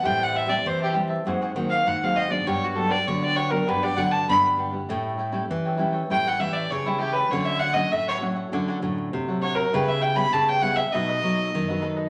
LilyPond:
<<
  \new Staff \with { instrumentName = "Fiddle" } { \time 4/4 \key a \mixolydian \tempo 4 = 99 g''16 fis''16 e''16 d''16 c''16 g'16 r4 r16 eis''16 fis''16 eis''16 dis''16 d''16 | cis''16 fis'16 a'16 d''16 cis''16 d''16 cis''16 ais'16 b'16 d''16 fis''16 a''16 b''8 r8 | r2 g''16 fis''16 e''16 d''16 cis''16 e'16 g'16 b'16 | cis''16 e''16 fis''16 dis''16 e''16 cis''16 r2 cis''16 ais'16 |
b'16 e''16 g''16 b''16 a''16 g''16 fis''16 e''16 dis''4. r8 | }
  \new Staff \with { instrumentName = "Cavaquinho" } { \time 4/4 \key a \mixolydian <g' c'' e'' a''>8 <g' c'' e'' a''>16 <g' c'' e'' a''>16 r16 <c'' e'' a''>16 <g' c'' e'' a''>16 <c'' e'' a''>16 <fis' gis' bis' fis''>16 <fis' gis' bis' fis''>16 <fis' gis' bis' fis''>8. <gis' bis' fis''>16 <fis' gis' bis' fis''>16 <gis' bis' fis''>16 | <d' g' b' fis''>8 <d' g' b' fis''>16 <d' g' b' fis''>16 r16 <g' b' fis''>16 <d' g' b' fis''>16 <g' b' fis''>16 <d' g' b' fis''>16 <d' g' b' fis''>16 <d' g' b' fis''>8. <g' b' fis''>16 <d' g' b' fis''>16 <g' b' fis''>16 | <e' a' cis'' g''>8 <e' a' cis'' g''>16 <e' a' cis'' g''>16 r16 <a' cis'' g''>16 <e' a' cis'' g''>16 <a' cis'' g''>16 <e' a' cis'' g''>16 <e' a' cis'' g''>16 <e' a' cis'' g''>8. <a' cis'' g''>16 <e' a' cis'' g''>16 <a' cis'' g''>16 | <d' a' cis'' fis''>8 <d' a' cis'' fis''>16 <d' a' cis'' fis''>16 r16 <a' cis'' fis''>16 <d' a' cis'' fis''>16 <a' cis'' fis''>16 <d' a' cis'' fis''>16 <d' a' cis'' fis''>16 <d' a' cis'' fis''>8. <a' cis'' fis''>16 <d' a' cis'' fis''>16 <a' cis'' fis''>16 |
<e' b' cis'' g''>8 <e' b' cis'' g''>16 <e' b' cis'' g''>16 r16 <b' cis'' g''>16 <e' b' cis'' g''>16 <b' cis'' g''>16 <dis' a' b' dis''>16 <dis' a' b' dis''>16 <a' b'>8. <a' b' dis''>16 <dis' a' b' dis''>16 <a' b' dis''>16 | }
  \new Staff \with { instrumentName = "Nylon-string guitar" } { \time 4/4 \key a \mixolydian << { <g c' e'>8. <g c' e'>8. <g c' e'>8 <fis ais bis>8 <fis ais bis>8 r16 <fis ais bis>8 <fis b d'>16~ | <fis b d'>8 <fis b d'>16 r16 <fis b d'>8 r16 <fis b d'>8. <fis b d'>16 r16 <fis b d'>8. <g cis' e'>16~ | <g cis' e'>8 r16 <g cis' e'>8. <g cis' e'>8 <g cis' e'>16 r16 <g cis' e'>8. <g cis' e'>8. | <fis a cis'>8 r16 <fis a cis'>8. <fis a cis'>8 <fis a cis'>8 <fis a cis'>8 r16 <fis a>8. |
<g b e'>8. <g b e'>8. <g b e'>16 r16 <fis a dis'>8 <fis a dis'>8 r16 <fis a dis'>8. | } \\ { a,4 e4 gis,4 dis4 | g,4 d4 g,4 d4 | a,4 e4 a,4 e4 | d4 a,4 d4 a,4 |
cis4 cis4 b,4 fis,4 | } >> }
  \new Staff \with { instrumentName = "Nylon-string guitar" } { \clef bass \time 4/4 \key a \mixolydian a,4 e4 gis,8 dis8 gis,4 | g,4 d4 g,8 d8 g,4 | a,4 e4 a,8 e8 cis4 | d4 a,4 d8 a,8 c4 |
cis4 cis4 b,8 fis8 dis4 | }
>>